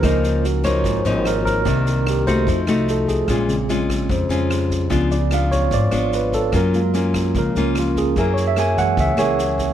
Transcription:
<<
  \new Staff \with { instrumentName = "Tine electric piano" } { \time 4/4 \key des \lydian \tempo 4 = 148 bes'4 ges'8 des''4. bes'8 bes'8~ | bes'4 g'8 c''4. a'8 aes'8~ | aes'4 r2. | r8 d''8 f''8 des''8 d''4 ces''8 a'8 |
bes'8 f'8 r4 bes'8 des'8 f'8 aes'8 | \tuplet 3/2 { bes'8 des''8 fes''8 } aes''8 ges''8 fes''8 des''8 r4 | }
  \new Staff \with { instrumentName = "Tine electric piano" } { \time 4/4 \key des \lydian <f bes ees'>8 r2. r8 | <ees bes d'>2 <a ees'>4. r8 | r8 <des aes c'>8 r2. | <f ces'>4. r2 r8 |
r8 <aes bes>8 r4 <f aes bes>8 r4. | r4. <fes aes bes>2~ <fes aes bes>8 | }
  \new Staff \with { instrumentName = "Nylon-string guitar" } { \time 4/4 \key des \lydian << { <f bes ees'>4 r8 <f bes ees'>4 <f bes ees'>4. | <ees bes d'>4. <a ees' ges'>4 <a ees' ges'>4. | <aes des' f'>8 r8 <aes des' f'>4. <aes des' f'>4. | <ces' d' f'>8 r8 <ces' d' f'>4. <ces' d' f'>4. |
<bes des' f'>8 r8 <bes des' f'>4. <bes des' f'>4. | <bes fes' aes'>4 <bes fes' aes'>4. <bes fes' aes'>4. | } \\ { des2 aes,2 | c2 f2 | bes,2 f,2 | des2 aes,2 |
ges2 des2 | ges2 des2 | } >> }
  \new Staff \with { instrumentName = "Upright bass" } { \clef bass \time 4/4 \key des \lydian des,2 aes,,8 aes,,4. | c,2 f,8 c,4. | bes,,2 f,8 f,4. | des,2 aes,,8 aes,,4. |
ges,2 des,8 des,4. | ges,2 des,8 des,4. | }
  \new DrumStaff \with { instrumentName = "Drums" } \drummode { \time 4/4 <bd ss sn>8 sn8 sn8 <bd ss sn>8 <bd sn>8 sn8 <ss sn>8 <bd sn>8 | <bd sn>8 sn8 <ss sn>8 <bd sn>8 <bd sn>8 <ss sn>8 sn8 <bd sn>8 | <bd ss sn>8 sn8 sn8 <bd ss sn>8 <bd sn>8 sn8 <ss sn>8 <bd sn>8 | <bd sn>8 sn8 <ss sn>8 <bd sn>8 <bd sn>8 <ss sn>8 sn8 <bd sn>8 |
<bd ss sn>8 sn8 sn8 <bd ss sn>8 <bd sn>8 sn8 <ss sn>8 <bd sn>8 | <bd sn>8 sn8 <ss sn>8 <bd sn>8 <bd sn>8 <ss sn>8 sn8 <bd sn>8 | }
>>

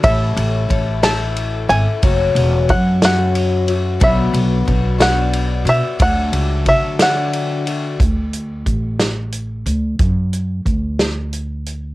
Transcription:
<<
  \new Staff \with { instrumentName = "Five-string banjo" } { \time 6/8 \key d \lydian \tempo 4. = 60 e''4. a''4 gis''8~ | gis''4 fis''8 fis''4 r8 | e''4 r8 fis''4 e''8 | fis''4 e''8 fis''4 r8 |
r2. | r2. | }
  \new Staff \with { instrumentName = "Twelve-string acoustic guitar" } { \time 6/8 \key d \lydian <a, e a cis' e' a'>4 <a cis' e' a'>8 <a, e a cis' e' a'>4 <a cis' e' a'>8 | <fis, cis fis a cis' fis'>4 <fis a cis' fis'>8 <fis, cis fis a cis' fis'>4 <fis a cis' fis'>8 | <b, fis b d' fis'>4 <fis b d' fis'>8 <b, fis b d' fis'>4 <b d' fis'>8 | <fis a d' fis'>4 <fis a d' fis'>8 <d fis a d' fis'>4 <a d' fis'>8 |
r2. | r2. | }
  \new Staff \with { instrumentName = "Upright bass" } { \clef bass \time 6/8 \key d \lydian a,,8 a,,8 a,,4. gis,,16 r16 | fis,,8 e,,8 fis,2 | b,,8 b,,8 b,,4. b,16 r16 | d,8 cis,8 d2 |
d,4 a,,4. d,8 | fis,4 d,2 | }
  \new DrumStaff \with { instrumentName = "Drums" } \drummode { \time 6/8 <bd cymr>8 cymr8 <bd cymr>8 <cymr sn>8 cymr8 cymr8 | <bd cymr>8 cymr8 <bd cymr>8 <cymr sn>8 cymr8 cymr8 | <bd cymr>8 cymr8 <bd cymr>8 <cymr sn>8 cymr8 cymr8 | <bd cymr>8 cymr8 <bd cymr>8 <cymr sn>8 cymr8 cymr8 |
<hh bd>8 hh8 <hh bd>8 <hh sn>8 hh8 hh8 | <hh bd>8 hh8 <hh bd>8 <hh sn>8 hh8 hh8 | }
>>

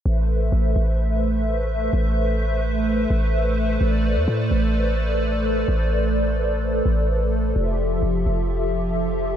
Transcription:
<<
  \new Staff \with { instrumentName = "Analog synth pad" } { \time 4/4 \key a \minor \tempo 4 = 128 << { e''1~ | e''1 | d''1~ | d''1 |
e''1 | } \\ { <a a' b' c''>1~ | <a a' b' c''>1~ | <a a' b' c''>1~ | <a a' b' c''>1 |
<f f' g'>1 | } >> }
  \new Staff \with { instrumentName = "808-style bass" } { \clef bass \time 4/4 \key a \minor a,,4 a,,8 a,,2~ a,,8 | a,,2~ a,,8 a,,4. | a,,8. e,16 a,8 a,,2~ a,,8 | a,,2~ a,,8 a,,4. |
f,,4 f,,8 f,,2~ f,,8 | }
>>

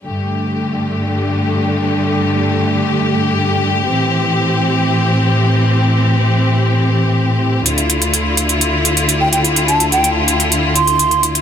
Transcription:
<<
  \new Staff \with { instrumentName = "Flute" } { \time 4/4 \key g \mixolydian \tempo 4 = 126 r1 | r1 | r1 | r1 |
r2. r16 g''16 g''16 r16 | r16 a''16 r16 g''16 r4. c'''4 r8 | }
  \new Staff \with { instrumentName = "String section" } { \clef bass \time 4/4 \key g \mixolydian << { g'1~ | g'1~ | g'1~ | g'1 |
f'1~ | f'1 | } \\ { <g, d a>1~ | <g, d a>1 | <a, e c'>1~ | <a, e c'>1 |
<d, d e'>1~ | <d, d e'>1 | } >> }
  \new DrumStaff \with { instrumentName = "Drums" } \drummode { \time 4/4 r4 r4 r4 r4 | r4 r4 r4 r4 | r4 r4 r4 r4 | r4 r4 r4 r4 |
hh16 hh16 hh16 hh16 hh8 hh16 hh16 hh8 hh16 hh16 hh8 hh16 hh16 | hh16 hh16 hh16 hh16 hh8 hh16 hh16 hh8 hh16 hh16 hh16 hh16 hh16 hh16 | }
>>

